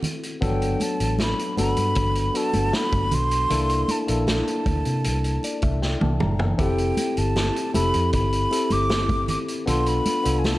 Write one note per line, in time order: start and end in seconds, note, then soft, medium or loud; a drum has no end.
0.03 closed hi-hat medium
0.03 low conga medium
0.23 closed hi-hat soft
0.41 0.74 G1 medium
0.41 1.30 F#3 medium
0.41 1.29 B3 medium
0.41 1.29 D4 medium
0.41 1.30 A4 medium
0.41 0.84 G5 medium
0.41 kick loud
0.41 closed hi-hat medium
0.41 low conga soft
0.62 closed hi-hat soft
0.80 1.20 A5 medium
0.80 closed hi-hat medium
0.80 high conga medium
1.00 1.32 A1 medium
1.00 closed hi-hat medium
1.19 1.56 B5 medium
1.19 snare medium
1.19 closed hi-hat medium
1.19 muted conga soft
1.19 high conga medium
1.39 closed hi-hat soft
1.57 1.74 G1 medium
1.57 2.16 B3 medium
1.57 2.16 D4 medium
1.57 2.16 F#4 medium
1.57 2.17 A4 medium
1.57 2.38 B5 medium
1.57 closed hi-hat medium
1.57 high conga medium
1.77 1.93 G2 medium
1.77 closed hi-hat soft
1.95 2.29 G1 medium
1.95 kick medium
1.95 closed hi-hat medium
2.15 closed hi-hat soft
2.34 3.22 B3 medium
2.34 3.22 D4 medium
2.34 3.23 F#4 medium
2.34 3.23 A4 medium
2.34 2.77 A5 medium
2.34 closed hi-hat medium
2.53 2.70 G1 medium
2.53 closed hi-hat soft
2.53 high conga medium
2.73 3.16 B5 medium
2.73 snare medium
2.73 closed hi-hat medium
2.92 3.09 G1 medium
2.92 kick medium
2.92 closed hi-hat soft
2.92 high conga medium
3.11 3.44 B1 medium
3.11 3.93 C6 loud
3.11 closed hi-hat medium
3.11 low conga medium
3.31 closed hi-hat soft
3.50 3.83 C2 medium
3.50 3.94 A#3 medium
3.50 3.94 D4 medium
3.50 3.94 E4 medium
3.50 3.95 A4 medium
3.50 closed hi-hat medium
3.50 low conga soft
3.70 closed hi-hat soft
3.88 4.29 A5 medium
3.88 closed hi-hat medium
3.88 high conga medium
4.07 4.41 A#1 medium
4.07 5.24 A#3 medium
4.07 5.25 D4 soft
4.07 5.25 E4 soft
4.07 5.26 A4 medium
4.07 closed hi-hat medium
4.27 5.79 A5 medium
4.27 snare medium
4.27 closed hi-hat medium
4.27 high conga medium
4.48 closed hi-hat soft
4.66 4.82 D2 medium
4.66 kick medium
4.66 closed hi-hat medium
4.66 muted conga soft
4.66 high conga medium
4.85 5.08 C3 medium
4.85 closed hi-hat soft
5.04 5.37 C2 medium
5.04 closed hi-hat medium
5.04 muted conga soft
5.24 closed hi-hat soft
5.43 5.62 D5 medium
5.43 closed hi-hat medium
5.43 muted conga soft
5.62 5.95 C2 medium
5.62 5.81 E5 medium
5.62 kick medium
5.62 closed hi-hat soft
5.62 high conga medium
5.82 6.00 G5 medium
5.82 snare soft
6.01 6.18 C2 medium
6.01 6.19 A5 medium
6.01 high tom soft
6.01 high conga medium
6.20 6.53 F#1 medium
6.20 6.56 A#5 medium
6.20 mid tom medium
6.20 muted conga soft
6.20 low conga medium
6.39 floor tom medium
6.58 6.91 F1 medium
6.58 7.46 C4 medium
6.58 7.46 E4 medium
6.58 7.47 G4 medium
6.58 7.47 A4 medium
6.58 7.20 G5 medium
6.58 kick loud
6.58 closed hi-hat medium
6.58 low conga soft
6.78 closed hi-hat soft
6.97 closed hi-hat medium
6.97 muted conga soft
6.97 high conga medium
7.17 7.49 G1 medium
7.17 7.75 A5 medium
7.17 closed hi-hat medium
7.36 snare medium
7.36 closed hi-hat medium
7.36 muted conga soft
7.36 high conga medium
7.56 closed hi-hat medium
7.74 7.91 F1 medium
7.74 8.32 C4 medium
7.74 8.33 E4 medium
7.74 8.33 G4 medium
7.74 8.33 A4 medium
7.74 8.11 B5 medium
7.74 closed hi-hat medium
7.74 muted conga soft
7.74 high conga medium
7.94 8.10 F2 medium
7.94 closed hi-hat soft
8.13 8.46 G1 medium
8.13 8.74 B5 medium
8.13 kick medium
8.13 closed hi-hat medium
8.33 closed hi-hat soft
8.51 9.39 C4 medium
8.51 9.39 E4 medium
8.51 9.39 G4 medium
8.51 9.39 A4 medium
8.51 closed hi-hat medium
8.51 muted conga soft
8.70 9.35 G1 medium
8.70 9.29 D6 medium
8.70 closed hi-hat soft
8.70 high conga medium
8.90 snare loud
8.90 closed hi-hat medium
8.90 muted conga soft
9.09 kick medium
9.09 closed hi-hat soft
9.09 high conga medium
9.28 9.38 D6 medium
9.28 closed hi-hat medium
9.28 low conga medium
9.48 closed hi-hat soft
9.66 10.00 B1 medium
9.66 10.10 B3 medium
9.66 10.11 D4 medium
9.66 10.11 F4 medium
9.66 10.11 A4 medium
9.66 9.89 C6 medium
9.66 closed hi-hat medium
9.66 muted conga soft
9.66 low conga soft
9.86 10.40 B5 medium
9.86 closed hi-hat soft
10.05 closed hi-hat medium
10.05 high conga medium
10.23 10.57 C2 medium
10.23 10.58 B3 medium
10.23 10.58 D4 soft
10.23 10.58 F4 medium
10.23 10.58 A4 medium
10.23 closed hi-hat medium
10.39 10.47 G#5 medium
10.44 10.58 A5 medium
10.44 snare medium
10.44 closed hi-hat medium
10.44 muted conga soft
10.44 high conga medium